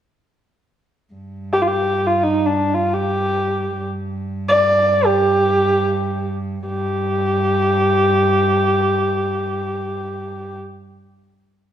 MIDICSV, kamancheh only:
0, 0, Header, 1, 2, 480
1, 0, Start_track
1, 0, Tempo, 500000
1, 11258, End_track
2, 0, Start_track
2, 0, Title_t, "Kamancheh"
2, 0, Program_c, 0, 110
2, 1467, Note_on_c, 0, 67, 72
2, 1556, Note_on_c, 0, 65, 61
2, 1570, Note_off_c, 0, 67, 0
2, 1608, Note_on_c, 0, 67, 78
2, 1622, Note_off_c, 0, 65, 0
2, 1986, Note_on_c, 0, 65, 68
2, 2000, Note_off_c, 0, 67, 0
2, 2140, Note_on_c, 0, 63, 73
2, 2155, Note_off_c, 0, 65, 0
2, 2364, Note_on_c, 0, 62, 63
2, 2378, Note_off_c, 0, 63, 0
2, 2636, Note_on_c, 0, 65, 60
2, 2650, Note_off_c, 0, 62, 0
2, 2821, Note_on_c, 0, 67, 73
2, 2836, Note_off_c, 0, 65, 0
2, 3707, Note_off_c, 0, 67, 0
2, 4303, Note_on_c, 0, 74, 93
2, 4852, Note_on_c, 0, 67, 89
2, 4866, Note_off_c, 0, 74, 0
2, 6041, Note_off_c, 0, 67, 0
2, 6414, Note_on_c, 0, 67, 84
2, 10145, Note_off_c, 0, 67, 0
2, 11258, End_track
0, 0, End_of_file